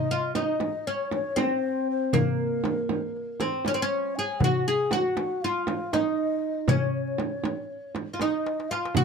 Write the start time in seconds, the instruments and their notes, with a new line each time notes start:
Already playing: oud D#4, ney D#5
0.11 oud F4
0.35 oud D#4, ney D#5, darbuka tek, frame drum
0.60 darbuka tek, frame drum
0.87 oud C#4, ney C#5, darbuka ka
1.11 ney C#5, darbuka tek, frame drum
1.36 oud C4, ney C5, darbuka tek, frame drum
1.91 ney C5
2.13 oud A#3, ney A#4, frame drum, darbuka dum
2.64 darbuka tek, frame drum
2.89 frame drum
3.16 darbuka ka
3.40 oud C4, darbuka tek, frame drum
3.65 oud C#4, ney C#5, darbuka tek, frame drum
3.74 oud C4
3.79 oud C#4, ney C#5
4.16 oud G#4, ney G#5
4.40 ney F#5, darbuka dum, frame drum
4.44 oud F#4
4.66 oud G#4, ney G#5
4.91 oud F#4, ney F#5, darbuka tek, frame drum
5.17 darbuka tek, frame drum
5.42 oud F4, ney F5, darbuka ka
5.66 ney F5, darbuka tek, frame drum
5.93 oud D#4, ney D#5, darbuka tek, frame drum
6.68 oud C#4, ney C#5, frame drum, darbuka dum
7.08 darbuka ka
7.18 darbuka tek, frame drum
7.44 darbuka tek, frame drum
7.95 darbuka tek, frame drum
8.13 oud F4
8.20 oud D#4, ney D#5, darbuka tek, frame drum
8.46 darbuka tek
8.60 darbuka ka
8.70 oud F4, ney F5, darbuka tek
8.85 darbuka ka
8.95 oud F#4, ney F#5, frame drum, darbuka dum